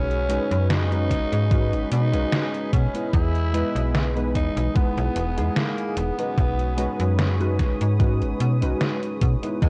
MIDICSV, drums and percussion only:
0, 0, Header, 1, 2, 480
1, 0, Start_track
1, 0, Key_signature, 5, "major"
1, 0, Tempo, 810811
1, 1855, Time_signature, 4, 2, 24, 8
1, 5737, End_track
2, 0, Start_track
2, 0, Title_t, "Drums"
2, 65, Note_on_c, 9, 42, 25
2, 124, Note_off_c, 9, 42, 0
2, 176, Note_on_c, 9, 42, 88
2, 235, Note_off_c, 9, 42, 0
2, 306, Note_on_c, 9, 42, 50
2, 365, Note_off_c, 9, 42, 0
2, 417, Note_on_c, 9, 38, 117
2, 417, Note_on_c, 9, 42, 50
2, 476, Note_off_c, 9, 38, 0
2, 476, Note_off_c, 9, 42, 0
2, 546, Note_on_c, 9, 42, 25
2, 605, Note_off_c, 9, 42, 0
2, 655, Note_on_c, 9, 36, 58
2, 657, Note_on_c, 9, 38, 36
2, 657, Note_on_c, 9, 42, 84
2, 714, Note_off_c, 9, 36, 0
2, 716, Note_off_c, 9, 38, 0
2, 716, Note_off_c, 9, 42, 0
2, 785, Note_on_c, 9, 42, 50
2, 844, Note_off_c, 9, 42, 0
2, 895, Note_on_c, 9, 36, 118
2, 896, Note_on_c, 9, 42, 53
2, 954, Note_off_c, 9, 36, 0
2, 955, Note_off_c, 9, 42, 0
2, 1025, Note_on_c, 9, 42, 26
2, 1085, Note_off_c, 9, 42, 0
2, 1135, Note_on_c, 9, 42, 91
2, 1194, Note_off_c, 9, 42, 0
2, 1264, Note_on_c, 9, 42, 50
2, 1323, Note_off_c, 9, 42, 0
2, 1375, Note_on_c, 9, 38, 115
2, 1375, Note_on_c, 9, 42, 48
2, 1434, Note_off_c, 9, 38, 0
2, 1434, Note_off_c, 9, 42, 0
2, 1505, Note_on_c, 9, 42, 25
2, 1564, Note_off_c, 9, 42, 0
2, 1615, Note_on_c, 9, 36, 103
2, 1615, Note_on_c, 9, 42, 84
2, 1674, Note_off_c, 9, 36, 0
2, 1675, Note_off_c, 9, 42, 0
2, 1744, Note_on_c, 9, 42, 52
2, 1803, Note_off_c, 9, 42, 0
2, 1855, Note_on_c, 9, 36, 111
2, 1856, Note_on_c, 9, 42, 49
2, 1914, Note_off_c, 9, 36, 0
2, 1915, Note_off_c, 9, 42, 0
2, 1984, Note_on_c, 9, 42, 25
2, 2043, Note_off_c, 9, 42, 0
2, 2097, Note_on_c, 9, 42, 83
2, 2156, Note_off_c, 9, 42, 0
2, 2226, Note_on_c, 9, 42, 48
2, 2286, Note_off_c, 9, 42, 0
2, 2336, Note_on_c, 9, 38, 111
2, 2336, Note_on_c, 9, 42, 48
2, 2395, Note_off_c, 9, 38, 0
2, 2395, Note_off_c, 9, 42, 0
2, 2466, Note_on_c, 9, 42, 24
2, 2525, Note_off_c, 9, 42, 0
2, 2575, Note_on_c, 9, 36, 58
2, 2576, Note_on_c, 9, 42, 85
2, 2634, Note_off_c, 9, 36, 0
2, 2635, Note_off_c, 9, 42, 0
2, 2705, Note_on_c, 9, 42, 50
2, 2764, Note_off_c, 9, 42, 0
2, 2814, Note_on_c, 9, 36, 118
2, 2816, Note_on_c, 9, 42, 50
2, 2874, Note_off_c, 9, 36, 0
2, 2875, Note_off_c, 9, 42, 0
2, 2945, Note_on_c, 9, 42, 25
2, 3004, Note_off_c, 9, 42, 0
2, 3054, Note_on_c, 9, 42, 87
2, 3113, Note_off_c, 9, 42, 0
2, 3183, Note_on_c, 9, 42, 48
2, 3242, Note_off_c, 9, 42, 0
2, 3293, Note_on_c, 9, 38, 115
2, 3293, Note_on_c, 9, 42, 47
2, 3352, Note_off_c, 9, 38, 0
2, 3352, Note_off_c, 9, 42, 0
2, 3422, Note_on_c, 9, 42, 25
2, 3482, Note_off_c, 9, 42, 0
2, 3533, Note_on_c, 9, 42, 84
2, 3592, Note_off_c, 9, 42, 0
2, 3662, Note_on_c, 9, 42, 49
2, 3722, Note_off_c, 9, 42, 0
2, 3774, Note_on_c, 9, 36, 109
2, 3775, Note_on_c, 9, 42, 50
2, 3834, Note_off_c, 9, 36, 0
2, 3834, Note_off_c, 9, 42, 0
2, 3903, Note_on_c, 9, 42, 25
2, 3962, Note_off_c, 9, 42, 0
2, 4013, Note_on_c, 9, 42, 86
2, 4073, Note_off_c, 9, 42, 0
2, 4143, Note_on_c, 9, 42, 47
2, 4202, Note_off_c, 9, 42, 0
2, 4255, Note_on_c, 9, 38, 110
2, 4255, Note_on_c, 9, 42, 48
2, 4314, Note_off_c, 9, 38, 0
2, 4314, Note_off_c, 9, 42, 0
2, 4384, Note_on_c, 9, 42, 24
2, 4443, Note_off_c, 9, 42, 0
2, 4494, Note_on_c, 9, 36, 56
2, 4495, Note_on_c, 9, 38, 34
2, 4495, Note_on_c, 9, 42, 85
2, 4554, Note_off_c, 9, 36, 0
2, 4554, Note_off_c, 9, 38, 0
2, 4554, Note_off_c, 9, 42, 0
2, 4623, Note_on_c, 9, 42, 49
2, 4683, Note_off_c, 9, 42, 0
2, 4735, Note_on_c, 9, 36, 113
2, 4735, Note_on_c, 9, 42, 50
2, 4794, Note_off_c, 9, 36, 0
2, 4794, Note_off_c, 9, 42, 0
2, 4864, Note_on_c, 9, 42, 24
2, 4923, Note_off_c, 9, 42, 0
2, 4974, Note_on_c, 9, 42, 87
2, 5033, Note_off_c, 9, 42, 0
2, 5104, Note_on_c, 9, 42, 49
2, 5163, Note_off_c, 9, 42, 0
2, 5215, Note_on_c, 9, 38, 108
2, 5215, Note_on_c, 9, 42, 49
2, 5274, Note_off_c, 9, 38, 0
2, 5274, Note_off_c, 9, 42, 0
2, 5345, Note_on_c, 9, 42, 25
2, 5404, Note_off_c, 9, 42, 0
2, 5455, Note_on_c, 9, 42, 82
2, 5456, Note_on_c, 9, 36, 96
2, 5514, Note_off_c, 9, 42, 0
2, 5515, Note_off_c, 9, 36, 0
2, 5584, Note_on_c, 9, 42, 49
2, 5643, Note_off_c, 9, 42, 0
2, 5696, Note_on_c, 9, 36, 108
2, 5696, Note_on_c, 9, 42, 51
2, 5737, Note_off_c, 9, 36, 0
2, 5737, Note_off_c, 9, 42, 0
2, 5737, End_track
0, 0, End_of_file